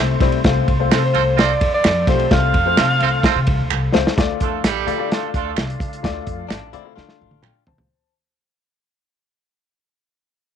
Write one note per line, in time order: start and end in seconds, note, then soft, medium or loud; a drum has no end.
0.00 0.17 C2 loud
0.00 0.42 A3 medium
0.00 0.41 C4 medium
0.00 0.22 G4 medium
0.00 0.41 C5 medium
0.00 0.21 E5 loud
0.00 0.41 E5 medium
0.00 3.86 C6 medium
0.20 0.40 B1 medium
0.20 0.37 G3 loud
0.20 0.37 C4 medium
0.20 0.37 E4 medium
0.20 0.37 C5 loud
0.20 kick loud
0.20 snare soft
0.20 ride medium
0.32 ride soft
0.44 0.64 C2 loud
0.44 0.68 A3 medium
0.44 0.68 C4 medium
0.44 0.68 F4 medium
0.44 4.14 A4 medium
0.44 3.88 C5 medium
0.44 0.69 C5 loud
0.44 2.30 F5 medium
0.44 kick loud
0.44 snare loud
0.44 ride medium
0.68 0.87 C2 loud
0.68 kick medium
0.68 ride medium
0.80 1.43 A3 medium
0.80 1.43 C4 medium
0.80 1.43 F4 medium
0.80 1.43 C5 medium
0.91 1.10 C3 loud
0.91 1.01 C4 medium
0.91 1.01 F4 medium
0.91 1.01 A4 medium
0.91 1.03 A4 medium
0.91 1.01 C5 loud
0.91 finger snap medium
0.91 snare loud
0.91 ride medium
1.05 1.40 C5 loud
1.14 1.53 C2 medium
1.14 1.22 C4 loud
1.14 1.22 F4 loud
1.14 1.22 A4 loud
1.14 1.22 C5 loud
1.14 ride medium
1.36 1.52 C4 loud
1.36 1.52 F4 loud
1.36 1.52 A4 loud
1.36 1.52 C5 loud
1.36 1.73 D5 loud
1.36 snare loud
1.36 ride medium
1.61 1.80 E2 loud
1.61 kick loud
1.61 ride medium
1.74 2.06 D5 loud
1.84 2.04 F2 loud
1.84 finger snap loud
1.84 snare loud
1.84 ride medium
2.07 2.26 B1 loud
2.07 2.23 A3 medium
2.07 2.23 C4 medium
2.07 2.24 F4 medium
2.07 2.24 G4 medium
2.07 2.33 C5 loud
2.07 kick loud
2.07 snare soft
2.07 ride medium
2.19 ride soft
2.31 2.50 C2 loud
2.31 2.55 A3 medium
2.31 2.55 C4 medium
2.31 2.55 F4 medium
2.31 2.55 C5 medium
2.31 3.71 F5 loud
2.31 3.92 F5 medium
2.31 kick loud
2.31 snare loud
2.31 ride medium
2.54 2.74 F2 medium
2.54 kick loud
2.54 ride medium
2.66 3.29 A3 medium
2.66 3.29 C4 medium
2.66 3.29 F4 medium
2.66 3.30 C5 medium
2.77 2.97 C3 loud
2.77 2.88 C4 medium
2.77 2.87 F4 medium
2.77 2.88 A4 medium
2.77 2.88 C5 loud
2.77 finger snap medium
2.77 snare loud
2.77 ride medium
3.00 3.20 C2 medium
3.00 3.09 C4 loud
3.00 3.09 F4 loud
3.00 3.09 A4 medium
3.00 3.09 C5 loud
3.00 ride medium
3.23 3.39 C4 loud
3.23 3.39 F4 loud
3.23 3.39 A4 loud
3.23 3.39 C5 loud
3.23 kick loud
3.23 snare loud
3.23 ride medium
3.36 3.45 C3 loud
3.47 3.57 C2 loud
3.47 kick loud
3.47 ride medium
3.60 3.69 D2 medium
3.70 3.90 C2 medium
3.70 finger snap loud
3.93 4.04 C#2 medium
3.93 4.10 A3 medium
3.93 4.10 C4 medium
3.93 4.10 F4 medium
3.93 4.10 C5 loud
3.93 snare loud
4.07 snare loud
4.16 4.37 D2 loud
4.16 4.64 A3 medium
4.16 7.87 D4 medium
4.16 4.65 F4 medium
4.16 7.86 F4 medium
4.16 7.87 A4 medium
4.16 4.65 D5 loud
4.16 7.87 F5 medium
4.16 kick loud
4.16 snare loud
4.16 closed hi-hat medium
4.40 4.60 E2 medium
4.40 4.60 A3 medium
4.40 4.60 D4 medium
4.40 4.60 F4 medium
4.40 4.60 A4 medium
4.40 kick medium
4.40 closed hi-hat medium
4.64 4.83 A1 medium
4.64 5.08 G3 loud
4.64 5.08 A3 loud
4.64 5.08 D4 loud
4.64 5.08 G4 loud
4.64 finger snap medium
4.64 snare loud
4.64 closed hi-hat loud
4.86 5.25 D3 medium
4.86 4.95 A3 medium
4.86 4.95 F4 medium
4.86 4.95 D5 loud
4.86 closed hi-hat medium
4.98 5.61 A3 medium
4.98 5.62 F4 medium
4.98 5.62 D5 loud
5.11 5.30 A3 medium
5.11 5.30 D4 medium
5.11 5.30 F4 medium
5.11 5.30 A4 loud
5.11 snare loud
5.11 closed hi-hat medium
5.34 5.53 D2 medium
5.34 5.53 A3 medium
5.34 5.53 D4 medium
5.34 5.53 F4 loud
5.34 5.53 A4 loud
5.34 kick loud
5.34 closed hi-hat medium
5.57 5.76 C2 medium
5.57 finger snap medium
5.57 snare loud
5.57 closed hi-hat medium
5.70 closed hi-hat medium
5.80 5.99 C#2 medium
5.80 kick loud
5.80 closed hi-hat medium
5.93 closed hi-hat medium
6.03 6.23 D2 loud
6.03 6.51 A3 medium
6.03 6.51 F4 medium
6.03 6.51 D5 loud
6.03 kick loud
6.03 snare loud
6.03 closed hi-hat medium
6.27 6.51 F2 medium
6.27 kick loud
6.27 closed hi-hat medium
6.49 6.69 A1 medium
6.49 6.72 D4 medium
6.49 finger snap medium
6.49 snare loud
6.49 closed hi-hat loud
6.73 6.92 D3 loud
6.73 6.81 A3 medium
6.73 6.96 C4 medium
6.73 6.95 E4 medium
6.73 6.81 F4 medium
6.73 6.82 D5 loud
6.73 closed hi-hat medium
6.85 7.48 A3 medium
6.85 7.48 F4 medium
6.85 7.44 F5 medium
6.96 7.16 D3 loud
6.96 7.63 D4 medium
6.96 7.63 F4 medium
6.96 snare medium
7.09 snare medium
7.21 7.49 A1 loud
7.31 high tom medium
7.43 7.66 G5 medium
7.43 finger snap medium
7.43 mid tom medium
7.67 7.77 C2 medium
7.67 8.12 C5 medium
7.67 8.12 A5 medium
7.67 floor tom loud
7.78 7.88 C#2 medium
7.78 floor tom medium